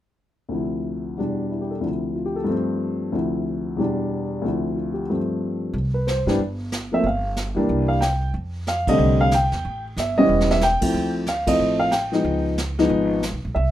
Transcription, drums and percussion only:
0, 0, Header, 1, 2, 480
1, 0, Start_track
1, 0, Key_signature, 0, "major"
1, 0, Tempo, 325910
1, 763, Time_signature, 4, 2, 24, 8
1, 20192, End_track
2, 0, Start_track
2, 0, Title_t, "Drums"
2, 8462, Note_on_c, 9, 25, 47
2, 8945, Note_on_c, 9, 44, 50
2, 8950, Note_on_c, 9, 38, 53
2, 9093, Note_off_c, 9, 44, 0
2, 9097, Note_off_c, 9, 38, 0
2, 9247, Note_on_c, 9, 38, 34
2, 9395, Note_off_c, 9, 38, 0
2, 9433, Note_off_c, 9, 25, 0
2, 9433, Note_on_c, 9, 25, 42
2, 9895, Note_on_c, 9, 44, 49
2, 9899, Note_on_c, 9, 38, 57
2, 10042, Note_off_c, 9, 44, 0
2, 10047, Note_off_c, 9, 38, 0
2, 10382, Note_off_c, 9, 25, 0
2, 10382, Note_on_c, 9, 25, 48
2, 10844, Note_on_c, 9, 44, 49
2, 10849, Note_on_c, 9, 38, 55
2, 10992, Note_off_c, 9, 44, 0
2, 10996, Note_off_c, 9, 38, 0
2, 11331, Note_off_c, 9, 25, 0
2, 11331, Note_on_c, 9, 25, 45
2, 11803, Note_on_c, 9, 44, 48
2, 11807, Note_on_c, 9, 38, 54
2, 11950, Note_off_c, 9, 44, 0
2, 11954, Note_off_c, 9, 38, 0
2, 12295, Note_off_c, 9, 25, 0
2, 12295, Note_on_c, 9, 25, 44
2, 12765, Note_on_c, 9, 44, 57
2, 12770, Note_on_c, 9, 38, 59
2, 12913, Note_off_c, 9, 44, 0
2, 12917, Note_off_c, 9, 38, 0
2, 13069, Note_on_c, 9, 36, 70
2, 13070, Note_on_c, 9, 51, 66
2, 13217, Note_off_c, 9, 36, 0
2, 13217, Note_off_c, 9, 51, 0
2, 13247, Note_off_c, 9, 25, 0
2, 13247, Note_on_c, 9, 25, 48
2, 13713, Note_on_c, 9, 44, 60
2, 13717, Note_on_c, 9, 38, 57
2, 13860, Note_off_c, 9, 44, 0
2, 13865, Note_off_c, 9, 38, 0
2, 14016, Note_on_c, 9, 38, 37
2, 14163, Note_off_c, 9, 38, 0
2, 14196, Note_off_c, 9, 25, 0
2, 14196, Note_on_c, 9, 25, 53
2, 14686, Note_on_c, 9, 44, 57
2, 14691, Note_on_c, 9, 38, 53
2, 14834, Note_off_c, 9, 44, 0
2, 14838, Note_off_c, 9, 38, 0
2, 15325, Note_on_c, 9, 38, 48
2, 15473, Note_off_c, 9, 38, 0
2, 15473, Note_on_c, 9, 38, 77
2, 15620, Note_off_c, 9, 38, 0
2, 15622, Note_on_c, 9, 44, 51
2, 15626, Note_on_c, 9, 38, 51
2, 15769, Note_off_c, 9, 44, 0
2, 15774, Note_off_c, 9, 38, 0
2, 15929, Note_on_c, 9, 49, 70
2, 15937, Note_on_c, 9, 36, 69
2, 16077, Note_off_c, 9, 49, 0
2, 16085, Note_off_c, 9, 36, 0
2, 16108, Note_off_c, 9, 25, 0
2, 16108, Note_on_c, 9, 25, 45
2, 16589, Note_on_c, 9, 44, 54
2, 16593, Note_on_c, 9, 38, 55
2, 16736, Note_off_c, 9, 44, 0
2, 16741, Note_off_c, 9, 38, 0
2, 16893, Note_on_c, 9, 51, 73
2, 16898, Note_on_c, 9, 36, 75
2, 17040, Note_off_c, 9, 51, 0
2, 17045, Note_off_c, 9, 36, 0
2, 17078, Note_off_c, 9, 25, 0
2, 17078, Note_on_c, 9, 25, 46
2, 17549, Note_on_c, 9, 44, 56
2, 17553, Note_on_c, 9, 38, 58
2, 17696, Note_off_c, 9, 44, 0
2, 17701, Note_off_c, 9, 38, 0
2, 17865, Note_on_c, 9, 38, 35
2, 18012, Note_off_c, 9, 38, 0
2, 18039, Note_off_c, 9, 25, 0
2, 18039, Note_on_c, 9, 25, 57
2, 18521, Note_on_c, 9, 44, 58
2, 18525, Note_on_c, 9, 38, 65
2, 18668, Note_off_c, 9, 44, 0
2, 18673, Note_off_c, 9, 38, 0
2, 18831, Note_on_c, 9, 38, 34
2, 18979, Note_off_c, 9, 38, 0
2, 18995, Note_off_c, 9, 25, 0
2, 18995, Note_on_c, 9, 25, 48
2, 19477, Note_on_c, 9, 44, 53
2, 19481, Note_on_c, 9, 38, 58
2, 19624, Note_off_c, 9, 44, 0
2, 19629, Note_off_c, 9, 38, 0
2, 19973, Note_off_c, 9, 25, 0
2, 19973, Note_on_c, 9, 25, 46
2, 20192, Note_off_c, 9, 25, 0
2, 20192, End_track
0, 0, End_of_file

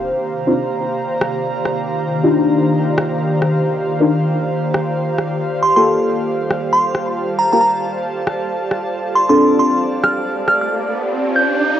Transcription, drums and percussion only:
0, 0, Header, 1, 2, 480
1, 0, Start_track
1, 0, Tempo, 441176
1, 121, Time_signature, 4, 2, 24, 8
1, 12835, End_track
2, 0, Start_track
2, 0, Title_t, "Drums"
2, 1320, Note_on_c, 9, 37, 66
2, 1429, Note_off_c, 9, 37, 0
2, 1800, Note_on_c, 9, 37, 49
2, 1909, Note_off_c, 9, 37, 0
2, 3239, Note_on_c, 9, 37, 64
2, 3348, Note_off_c, 9, 37, 0
2, 3719, Note_on_c, 9, 37, 48
2, 3828, Note_off_c, 9, 37, 0
2, 5159, Note_on_c, 9, 37, 61
2, 5268, Note_off_c, 9, 37, 0
2, 5639, Note_on_c, 9, 37, 46
2, 5748, Note_off_c, 9, 37, 0
2, 7079, Note_on_c, 9, 37, 58
2, 7188, Note_off_c, 9, 37, 0
2, 7559, Note_on_c, 9, 37, 46
2, 7667, Note_off_c, 9, 37, 0
2, 9000, Note_on_c, 9, 37, 61
2, 9109, Note_off_c, 9, 37, 0
2, 9480, Note_on_c, 9, 37, 46
2, 9589, Note_off_c, 9, 37, 0
2, 10919, Note_on_c, 9, 37, 62
2, 11028, Note_off_c, 9, 37, 0
2, 11400, Note_on_c, 9, 37, 45
2, 11508, Note_off_c, 9, 37, 0
2, 12835, End_track
0, 0, End_of_file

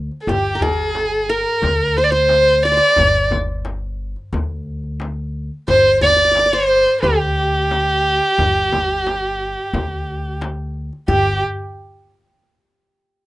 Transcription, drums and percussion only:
0, 0, Header, 1, 3, 480
1, 0, Start_track
1, 0, Tempo, 674916
1, 199, Time_signature, 4, 2, 24, 8
1, 9431, End_track
2, 0, Start_track
2, 0, Title_t, "Darbuka"
2, 81, Note_on_c, 9, 62, 23
2, 152, Note_off_c, 9, 62, 0
2, 194, Note_on_c, 9, 64, 79
2, 265, Note_off_c, 9, 64, 0
2, 431, Note_on_c, 9, 64, 71
2, 502, Note_off_c, 9, 64, 0
2, 557, Note_on_c, 9, 62, 23
2, 628, Note_off_c, 9, 62, 0
2, 675, Note_on_c, 9, 63, 60
2, 746, Note_off_c, 9, 63, 0
2, 1039, Note_on_c, 9, 62, 21
2, 1110, Note_off_c, 9, 62, 0
2, 1152, Note_on_c, 9, 64, 85
2, 1223, Note_off_c, 9, 64, 0
2, 1629, Note_on_c, 9, 63, 64
2, 1700, Note_off_c, 9, 63, 0
2, 2108, Note_on_c, 9, 64, 95
2, 2179, Note_off_c, 9, 64, 0
2, 2353, Note_on_c, 9, 64, 76
2, 2424, Note_off_c, 9, 64, 0
2, 2474, Note_on_c, 9, 62, 22
2, 2545, Note_off_c, 9, 62, 0
2, 2594, Note_on_c, 9, 63, 63
2, 2666, Note_off_c, 9, 63, 0
2, 2960, Note_on_c, 9, 62, 23
2, 3031, Note_off_c, 9, 62, 0
2, 3077, Note_on_c, 9, 64, 85
2, 3148, Note_off_c, 9, 64, 0
2, 3439, Note_on_c, 9, 62, 23
2, 3510, Note_off_c, 9, 62, 0
2, 3555, Note_on_c, 9, 63, 62
2, 3626, Note_off_c, 9, 63, 0
2, 4039, Note_on_c, 9, 64, 84
2, 4110, Note_off_c, 9, 64, 0
2, 4276, Note_on_c, 9, 64, 74
2, 4347, Note_off_c, 9, 64, 0
2, 4399, Note_on_c, 9, 62, 25
2, 4471, Note_off_c, 9, 62, 0
2, 4518, Note_on_c, 9, 63, 62
2, 4589, Note_off_c, 9, 63, 0
2, 4884, Note_on_c, 9, 62, 24
2, 4955, Note_off_c, 9, 62, 0
2, 5000, Note_on_c, 9, 64, 88
2, 5071, Note_off_c, 9, 64, 0
2, 5363, Note_on_c, 9, 62, 24
2, 5434, Note_off_c, 9, 62, 0
2, 5484, Note_on_c, 9, 63, 68
2, 5555, Note_off_c, 9, 63, 0
2, 5964, Note_on_c, 9, 64, 85
2, 6035, Note_off_c, 9, 64, 0
2, 6208, Note_on_c, 9, 64, 72
2, 6279, Note_off_c, 9, 64, 0
2, 6329, Note_on_c, 9, 62, 23
2, 6400, Note_off_c, 9, 62, 0
2, 6448, Note_on_c, 9, 63, 64
2, 6519, Note_off_c, 9, 63, 0
2, 6567, Note_on_c, 9, 62, 21
2, 6638, Note_off_c, 9, 62, 0
2, 6683, Note_on_c, 9, 62, 21
2, 6755, Note_off_c, 9, 62, 0
2, 6802, Note_on_c, 9, 62, 21
2, 6873, Note_off_c, 9, 62, 0
2, 6925, Note_on_c, 9, 64, 89
2, 6996, Note_off_c, 9, 64, 0
2, 7167, Note_on_c, 9, 62, 22
2, 7238, Note_off_c, 9, 62, 0
2, 7289, Note_on_c, 9, 62, 20
2, 7360, Note_off_c, 9, 62, 0
2, 7410, Note_on_c, 9, 63, 77
2, 7481, Note_off_c, 9, 63, 0
2, 7771, Note_on_c, 9, 62, 26
2, 7842, Note_off_c, 9, 62, 0
2, 7882, Note_on_c, 9, 64, 78
2, 7953, Note_off_c, 9, 64, 0
2, 9431, End_track
3, 0, Start_track
3, 0, Title_t, "Frame drum"
3, 200, Note_on_c, 9, 64, 91
3, 271, Note_off_c, 9, 64, 0
3, 439, Note_on_c, 9, 64, 84
3, 510, Note_off_c, 9, 64, 0
3, 686, Note_on_c, 9, 64, 61
3, 757, Note_off_c, 9, 64, 0
3, 1161, Note_on_c, 9, 64, 87
3, 1232, Note_off_c, 9, 64, 0
3, 1640, Note_on_c, 9, 64, 64
3, 1711, Note_off_c, 9, 64, 0
3, 2118, Note_on_c, 9, 64, 92
3, 2189, Note_off_c, 9, 64, 0
3, 2359, Note_on_c, 9, 64, 84
3, 2430, Note_off_c, 9, 64, 0
3, 2600, Note_on_c, 9, 64, 59
3, 2671, Note_off_c, 9, 64, 0
3, 3085, Note_on_c, 9, 64, 82
3, 3156, Note_off_c, 9, 64, 0
3, 3567, Note_on_c, 9, 64, 66
3, 3638, Note_off_c, 9, 64, 0
3, 4045, Note_on_c, 9, 64, 80
3, 4116, Note_off_c, 9, 64, 0
3, 4288, Note_on_c, 9, 64, 80
3, 4359, Note_off_c, 9, 64, 0
3, 4526, Note_on_c, 9, 64, 66
3, 4597, Note_off_c, 9, 64, 0
3, 5005, Note_on_c, 9, 64, 82
3, 5076, Note_off_c, 9, 64, 0
3, 5486, Note_on_c, 9, 64, 73
3, 5557, Note_off_c, 9, 64, 0
3, 5965, Note_on_c, 9, 64, 86
3, 6036, Note_off_c, 9, 64, 0
3, 6205, Note_on_c, 9, 64, 87
3, 6276, Note_off_c, 9, 64, 0
3, 6449, Note_on_c, 9, 64, 67
3, 6520, Note_off_c, 9, 64, 0
3, 6929, Note_on_c, 9, 64, 92
3, 7000, Note_off_c, 9, 64, 0
3, 7406, Note_on_c, 9, 64, 69
3, 7477, Note_off_c, 9, 64, 0
3, 7883, Note_on_c, 9, 64, 75
3, 7954, Note_off_c, 9, 64, 0
3, 9431, End_track
0, 0, End_of_file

